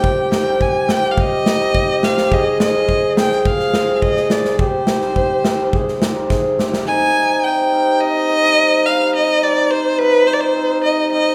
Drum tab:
SD |--o---o---o---oo|--o---oo-oo--ooo|--oo--o--oo-o-oo|----------------|
BD |o---o---o---o---|o---o---o---o---|o---o---o---o---|----------------|

SD |----------------|
BD |----------------|